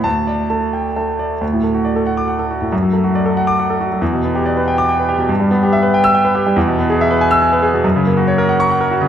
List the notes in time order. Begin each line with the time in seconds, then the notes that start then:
0.04 D2 A5
0.27 D5
0.50 A3 A5
0.73 G5
0.96 A3 A5
1.19 D5
1.41 D2
1.53 A2
1.64 A3
1.75 F#4
1.85 D5
1.96 A4
2.07 F#5
2.17 D6
2.28 F#5
2.39 A4
2.51 F#4
2.62 A2
2.72 F#2
2.83 F#3
2.93 A3
3.04 F#4
3.15 D5
3.26 A4
3.37 F#5
3.47 D6
3.60 F#5
3.70 A4
3.81 F#4
3.92 F#3
4.02 E2
4.13 B2
4.24 B3
4.35 G4
4.46 D5
4.57 B4
4.68 G5
4.78 D6
4.89 G5
4.99 B4
5.09 G4
5.18 B2
5.29 G2
5.40 G3
5.51 B3
5.63 G4
5.73 E5
5.83 B4
5.94 G5
6.04 E6
6.14 G5
6.25 B4
6.35 G4
6.47 G3
6.56 E2
6.67 B2
6.79 B3
6.90 G#4
7.01 E5
7.11 B4
7.21 G#5
7.31 E6
7.42 G#5
7.53 B4
7.62 G#4
7.74 B2
7.84 F#2
7.96 C#3
8.07 A#3
8.17 F#4
8.28 C#5
8.38 A#4
8.49 F#5
8.60 C#6
8.70 F#5
8.81 A#4
8.91 F#4
9.01 C#3